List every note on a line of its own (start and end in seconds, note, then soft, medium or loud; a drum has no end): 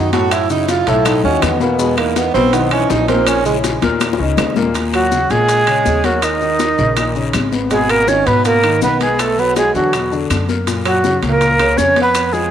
0.00 0.81 F#2 medium
0.00 0.13 D#4 medium
0.13 0.43 A2 medium
0.13 0.44 A3 medium
0.13 0.34 F#4 loud
0.13 0.44 A4 medium
0.13 high conga medium
0.13 high timbale medium
0.13 short guiro medium
0.13 maracas soft
0.31 0.50 E4 loud
0.31 high bongo medium
0.31 high conga soft
0.31 high timbale loud
0.31 long guiro medium
0.31 claves medium
0.31 maracas medium
0.50 0.80 C#3 medium
0.50 0.80 C#4 medium
0.50 0.71 D#4 medium
0.50 0.81 E4 medium
0.50 high bongo soft
0.50 high conga soft
0.50 maracas medium
0.68 0.90 F4 loud
0.68 high bongo medium
0.68 high conga medium
0.68 high timbale medium
0.68 short guiro medium
0.68 maracas medium
0.87 1.21 B1 loud
0.87 1.17 A2 medium
0.87 1.17 A3 loud
0.87 1.07 E4 loud
0.87 1.17 A4 medium
0.87 high bongo soft
0.87 high conga soft
0.87 high timbale medium
0.87 short guiro medium
0.87 maracas soft
1.05 1.24 D#4 medium
1.05 high bongo medium
1.05 high conga soft
1.05 low conga medium
1.05 high timbale medium
1.05 long guiro medium
1.05 claves medium
1.05 maracas medium
1.23 1.41 D#2 medium
1.23 1.54 D#3 medium
1.23 1.44 C#4 loud
1.23 1.54 D#4 medium
1.23 1.54 F#4 medium
1.23 high conga soft
1.23 low conga medium
1.42 2.29 E2 medium
1.42 1.60 B3 medium
1.42 high bongo medium
1.42 low bongo medium
1.42 high conga medium
1.42 high timbale medium
1.42 short guiro medium
1.42 claves medium
1.42 maracas medium
1.60 1.76 B2 medium
1.60 1.80 A#3 medium
1.60 1.76 B3 loud
1.60 1.76 B4 medium
1.60 high bongo soft
1.60 high conga medium
1.60 short guiro medium
1.60 maracas soft
1.79 1.94 B2 loud
1.79 1.97 G#3 medium
1.79 1.94 B3 medium
1.79 1.95 B4 loud
1.79 high bongo medium
1.79 high conga soft
1.79 long guiro medium
1.79 maracas medium
1.97 2.28 E3 medium
1.97 2.18 A#3 medium
1.97 2.28 D#4 medium
1.97 2.28 E4 medium
1.97 high conga soft
1.97 high timbale medium
1.97 claves medium
2.16 2.33 B3 medium
2.16 high bongo medium
2.16 high conga loud
2.16 high timbale medium
2.16 short guiro medium
2.16 maracas medium
2.34 2.86 B1 loud
2.34 2.50 B2 loud
2.34 2.50 B3 medium
2.34 2.55 C4 loud
2.34 2.50 B4 medium
2.34 high conga soft
2.34 short guiro medium
2.34 maracas soft
2.53 2.68 D#3 medium
2.53 2.71 B3 loud
2.53 2.68 D#4 medium
2.53 2.69 E4 medium
2.53 high bongo medium
2.53 high conga soft
2.53 high timbale medium
2.53 long guiro medium
2.53 maracas medium
2.71 3.02 E3 medium
2.71 2.92 C#4 medium
2.71 3.02 D#4 medium
2.71 3.02 E4 medium
2.71 high conga soft
2.71 high timbale medium
2.71 claves medium
2.90 3.77 A#1 loud
2.90 3.08 D#4 loud
2.90 high bongo medium
2.90 low bongo medium
2.90 high conga soft
2.90 short guiro medium
2.90 maracas medium
3.08 3.39 A#2 medium
3.08 3.39 A#3 medium
3.08 3.29 C4 loud
3.08 3.39 A#4 medium
3.08 high conga medium
3.08 high timbale medium
3.08 short guiro medium
3.08 maracas soft
3.27 3.45 C#4 loud
3.27 high bongo medium
3.27 high conga soft
3.27 high timbale loud
3.27 long guiro medium
3.27 claves medium
3.27 maracas medium
3.45 3.76 C#3 medium
3.45 3.57 G#3 loud
3.45 3.76 C#4 medium
3.45 3.76 E4 medium
3.45 high bongo soft
3.45 high conga soft
3.45 maracas medium
3.64 high bongo medium
3.64 high conga medium
3.64 high timbale medium
3.64 short guiro medium
3.64 maracas medium
3.82 4.17 D#2 loud
3.82 4.13 A#2 loud
3.82 4.13 A#3 medium
3.82 4.13 A#4 loud
3.82 high bongo soft
3.82 high conga medium
3.82 high timbale medium
3.82 short guiro medium
3.82 maracas soft
4.00 high bongo medium
4.00 high conga loud
4.00 high timbale loud
4.00 long guiro medium
4.00 claves medium
4.00 maracas medium
4.13 high bongo loud
4.19 4.37 C#2 medium
4.19 4.50 C#3 medium
4.19 4.50 C#4 medium
4.19 4.50 D#4 medium
4.37 5.24 D#2 medium
4.37 low bongo loud
4.37 low conga loud
4.37 high timbale medium
4.37 low timbale medium
4.37 short guiro medium
4.37 claves medium
4.37 maracas medium
4.50 low bongo medium
4.56 4.71 A#2 loud
4.56 4.72 A#3 loud
4.56 4.72 A#4 medium
4.56 low conga loud
4.56 short guiro medium
4.56 maracas soft
4.62 low bongo medium
4.74 5.05 A#2 medium
4.74 5.05 A#3 medium
4.74 high bongo medium
4.74 high conga soft
4.74 high timbale medium
4.74 long guiro medium
4.74 maracas medium
4.93 5.33 F#3 medium
4.93 5.32 F#4 medium
4.93 high bongo soft
4.93 high conga soft
4.93 high timbale medium
4.93 claves medium
4.93 maracas soft
5.12 5.27 C#3 medium
5.12 5.27 C#4 medium
5.12 high bongo soft
5.12 high conga loud
5.12 short guiro medium
5.12 maracas medium
5.30 5.82 A#1 medium
5.30 5.61 A#2 medium
5.30 6.06 G#3 loud
5.30 5.61 A#3 medium
5.30 6.06 G#4 loud
5.30 high conga soft
5.30 high timbale medium
5.30 short guiro medium
5.30 maracas soft
5.49 high bongo medium
5.49 high conga soft
5.49 high timbale medium
5.49 long guiro medium
5.49 maracas medium
5.67 5.98 C#3 medium
5.67 5.98 C#4 medium
5.67 high bongo soft
5.67 high conga soft
5.67 high timbale medium
5.67 claves medium
5.67 maracas soft
5.86 6.73 D#2 medium
5.86 high bongo soft
5.86 low bongo medium
5.86 high conga medium
5.86 short guiro medium
5.86 maracas medium
6.04 6.25 F#3 medium
6.04 6.35 A#3 medium
6.04 6.25 F#4 medium
6.04 6.35 A#4 medium
6.04 high bongo soft
6.04 high conga medium
6.04 high timbale medium
6.04 short guiro medium
6.04 maracas soft
6.22 7.34 D#3 medium
6.22 7.34 D#4 medium
6.22 high bongo medium
6.22 high conga soft
6.22 high timbale loud
6.22 long guiro medium
6.22 claves medium
6.22 maracas medium
6.41 6.72 D#3 medium
6.41 6.72 D#4 medium
6.41 high bongo soft
6.41 high conga soft
6.41 maracas soft
6.59 high bongo soft
6.59 high conga medium
6.59 high timbale medium
6.59 short guiro medium
6.59 maracas medium
6.78 7.30 A#1 medium
6.78 6.94 C#3 medium
6.78 6.94 C#4 medium
6.78 high conga soft
6.78 short guiro medium
6.78 maracas soft
6.96 7.12 A#2 medium
6.96 7.12 A#3 medium
6.96 high bongo medium
6.96 high conga soft
6.96 high timbale medium
6.96 long guiro medium
6.96 claves medium
6.96 maracas medium
7.15 7.46 C#3 medium
7.15 7.46 C#4 medium
7.15 high bongo soft
7.15 high conga soft
7.15 maracas soft
7.33 8.21 G#1 medium
7.33 high bongo soft
7.33 low bongo medium
7.33 high conga medium
7.33 high timbale medium
7.33 short guiro medium
7.33 claves medium
7.33 maracas medium
7.52 7.68 B3 medium
7.52 7.68 B4 medium
7.52 high bongo soft
7.52 high conga medium
7.52 short guiro medium
7.52 maracas soft
7.71 8.01 B2 medium
7.71 7.91 G#3 medium
7.71 8.02 B3 medium
7.71 7.92 G#4 medium
7.71 high bongo medium
7.71 high timbale medium
7.71 long guiro medium
7.71 maracas medium
7.89 8.10 A#3 medium
7.89 8.10 A#4 loud
7.89 high bongo soft
7.89 high conga soft
7.89 high timbale medium
7.89 claves medium
7.89 maracas soft
8.08 8.23 D#3 medium
8.08 8.28 C#4 loud
8.08 8.23 D#4 medium
8.08 8.29 C#5 medium
8.08 high bongo medium
8.08 high conga medium
8.08 short guiro medium
8.08 maracas medium
8.26 8.78 G#2 medium
8.26 8.57 B2 medium
8.26 8.45 B3 medium
8.26 8.57 B3 medium
8.26 8.45 B4 medium
8.26 high conga soft
8.26 high timbale medium
8.26 short guiro medium
8.26 maracas soft
8.45 8.80 A#3 medium
8.45 8.80 A#4 loud
8.45 high bongo medium
8.45 high conga soft
8.45 high timbale medium
8.45 long guiro medium
8.45 maracas medium
8.63 8.94 D#3 medium
8.63 8.94 D#4 medium
8.63 high bongo soft
8.63 high timbale medium
8.63 claves medium
8.63 maracas soft
8.82 9.69 B1 medium
8.82 9.00 B3 medium
8.82 9.00 B4 medium
8.82 high bongo soft
8.82 low bongo medium
8.82 high conga medium
8.82 short guiro medium
8.82 maracas medium
9.00 9.22 G#3 medium
9.00 9.31 B3 medium
9.00 9.21 G#4 medium
9.00 9.31 B4 medium
9.00 high bongo soft
9.00 high conga medium
9.00 high timbale medium
9.00 short guiro medium
9.00 maracas soft
9.19 9.40 A3 medium
9.19 9.41 A4 medium
9.19 high bongo medium
9.19 high conga soft
9.19 high timbale medium
9.19 long guiro medium
9.19 claves medium
9.19 maracas medium
9.38 9.68 F#3 medium
9.38 9.56 B3 medium
9.38 9.69 F#4 medium
9.38 9.56 B4 medium
9.38 high bongo soft
9.38 high conga soft
9.38 maracas soft
9.56 9.74 G#3 medium
9.56 9.74 G#4 medium
9.56 high bongo medium
9.56 high conga loud
9.56 high timbale medium
9.56 short guiro medium
9.56 maracas medium
9.74 10.26 E2 medium
9.74 9.90 D3 medium
9.74 10.27 F#3 medium
9.74 9.90 D4 medium
9.74 10.27 F#4 medium
9.74 high conga soft
9.74 short guiro medium
9.74 maracas soft
9.93 10.09 B2 medium
9.93 10.09 B3 medium
9.93 high bongo medium
9.93 high conga soft
9.93 high timbale medium
9.93 long guiro medium
9.93 claves medium
9.93 maracas medium
10.12 10.42 D3 medium
10.12 10.42 D4 medium
10.12 high bongo soft
10.12 high conga soft
10.12 maracas soft
10.30 11.17 F#2 medium
10.30 high bongo soft
10.30 low bongo medium
10.30 high conga medium
10.30 high timbale medium
10.30 short guiro medium
10.30 claves medium
10.30 maracas medium
10.49 10.64 A#3 medium
10.49 10.64 A#4 medium
10.49 high bongo soft
10.49 high conga medium
10.49 short guiro medium
10.49 maracas soft
10.67 10.98 A#2 medium
10.67 10.98 A#3 medium
10.67 high bongo medium
10.67 high conga soft
10.67 high timbale medium
10.67 long guiro medium
10.67 maracas medium
10.85 11.20 F#3 medium
10.85 11.21 F#4 medium
10.85 high bongo soft
10.85 high conga soft
10.85 high timbale medium
10.85 claves medium
10.85 maracas soft
11.04 11.20 C#3 medium
11.04 11.20 C#4 medium
11.04 high bongo medium
11.04 high conga medium
11.04 short guiro medium
11.04 maracas medium
11.22 11.74 C#2 medium
11.22 11.53 A#2 medium
11.22 11.53 A#3 medium
11.22 high conga soft
11.22 high timbale medium
11.22 short guiro medium
11.22 maracas soft
11.29 11.79 A#3 medium
11.29 11.79 A#4 loud
11.41 high bongo medium
11.41 high conga soft
11.41 high timbale medium
11.41 long guiro medium
11.41 maracas medium
11.59 11.90 C#3 medium
11.59 11.90 C#4 medium
11.59 high bongo soft
11.59 high conga soft
11.59 high timbale medium
11.59 claves medium
11.59 maracas soft
11.77 12.51 F2 medium
11.77 12.01 C#4 medium
11.77 12.02 C#5 loud
11.77 high bongo soft
11.77 low bongo medium
11.77 high conga medium
11.77 short guiro medium
11.77 maracas medium
11.96 12.27 B3 medium
11.96 12.27 B4 medium
11.96 high bongo soft
11.96 high conga medium
11.96 high timbale medium
11.96 short guiro medium
11.96 maracas soft
12.02 12.34 B3 medium
12.02 12.34 B4 medium
12.15 high bongo medium
12.15 high conga soft
12.15 high timbale medium
12.15 long guiro medium
12.15 claves medium
12.15 maracas medium
12.33 12.51 F3 medium
12.33 12.51 G#3 medium
12.33 12.51 F4 medium
12.33 12.51 G#4 medium
12.33 high bongo soft
12.33 high conga soft
12.33 maracas soft